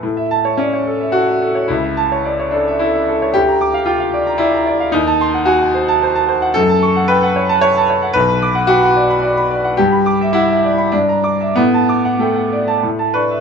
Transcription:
0.03 A2
0.17 E5
0.31 A5
0.45 C#5
0.57 C#4 D5
0.73 C#5
0.87 A4
1.01 E5
1.12 F#4 A4
1.28 E5
1.42 A4
1.55 C#5
1.68 C#2 E4
1.84 E5
1.97 A5
2.12 C#5
2.26 D5
2.40 C#5
2.51 D4 A4
2.68 E5
2.79 E4 A4
2.95 E5
3.09 A4
3.22 C#5
3.34 D2 G4
3.48 A#5
3.61 D6
3.74 F5
3.86 F4 G5
4.00 F5
4.14 D5
4.27 A#5
4.38 E4 D5
4.54 A#5
4.67 D5
4.80 F5
4.92 D#2 D#4
5.07 A5
5.21 C6
5.34 F#5
5.45 F#4 G#5
5.61 F#5
5.74 C5
5.88 A5
6.03 C5
6.15 A5
6.29 C5
6.42 F#5
6.54 F#2 A4
6.69 A5
6.83 C#6
6.96 F#5
7.08 B4 G5
7.23 F#5
7.36 C#5
7.49 A5
7.61 C#5
7.77 A5
7.90 C#5
8.02 F#5
8.13 B1 B4
8.29 B5
8.42 D6
8.55 F#5
8.67 F#4 G5
8.83 F#5
8.96 D5
9.10 B5
9.23 D5
9.37 B5
9.51 D5
9.64 F#5
9.77 G2 G4
9.92 B5
10.06 D6
10.21 E5
10.33 E4 F#5
10.50 E5
10.65 D5
10.78 B5
10.92 G2 D4
11.09 A#5
11.24 D6
11.41 E5
11.56 A2 B3
11.74 A5
11.89 D6
12.05 F#5
12.19 A3 G5
12.36 F#5
12.53 D5
12.68 A5
12.83 A2
12.99 A5
13.14 D4 B4 C#6
13.31 E5

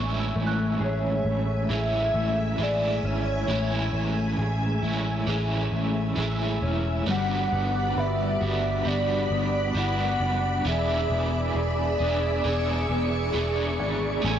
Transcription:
Already playing: A1 A2 E3 G#3 C#4 E4 G#4 E5 G#5 C#6
0.20 E6
0.36 A1 A3
0.47 F#6
0.80 A1 G#4 C#5
1.25 A1 A3
1.69 A1 E3 G#3 C#4 G#4
1.73 E4 E5
2.14 A1 A3
2.58 A1 E3 G#3 G#4
2.63 E4 D5
3.03 G#1 C#4 C#5
3.48 A1 A2 E3 G#3 C#4 E4
3.93 A1 A3
4.38 A1 G#4
4.82 A1 A3 C#4 E4
4.88 G#3
5.27 A1 E3 G#3 C#4 G#4
5.32 E4
5.72 A1 A3
6.16 A1 E3 G#3 C#4 G#4
6.21 E4
6.62 E1 C#4
7.06 G1 G3 B3 D4 F#4 D5 F#5 B5
7.10 F#5
7.53 G1 B3
7.96 G1 F#4 B4 E5 B5
8.40 G1 B3 D4 F#4
8.46 B3
8.85 G1 G3 B3 D4 F#4 D5
8.90 F#4
9.31 G1 B3
9.74 G1 G3 B3 E4 F#5
9.78 D4 F#4
9.99 F#4
10.20 F#1 D4
10.65 E1 E2 E3 B3 D4 G#4 E5
10.69 G#4
11.10 E1 B3
11.55 E1 G#4 D5
11.99 E1 B3 D4 G#4
12.04 B3
12.44 E1 E3 B3 D4 G#4 C#6
12.49 G#4
12.89 E1 B3
13.33 E1 E3 B3 D4 G#4
13.38 G#4
13.79 G#1 D4
14.22 A1 A2 A3 C#4 E5 G#5 C#6
14.27 E4 G#4

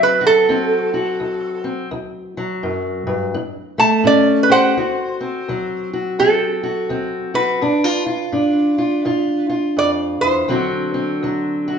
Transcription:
Already playing: D2 F#3 C4
0.03 B4
0.21 F#4
0.27 A4
0.49 D2 C4
0.94 F#4
1.20 D2
1.64 C4
1.91 D2
2.37 F#3
2.63 F#2
3.07 G2
3.34 A2
3.78 A3 A5
4.04 A2 C#4 D5
4.43 B4
4.50 G4 C5 F#5
4.77 D2 F#4
5.21 C4
5.48 D2 F#3
5.93 F#4
6.19 D2 C4 A4
6.63 F#4
6.89 D2 C4
7.34 F#4 B4
7.61 G2 D4
7.84 F4
8.06 F4
8.32 G2 D4
8.78 F4
9.05 G2 F4
9.49 F4
9.77 F2 D5
10.21 E2 C5
10.48 D2 D3 F#3 C4 F#4
10.94 C4
11.23 D2 F#3
11.68 F#4

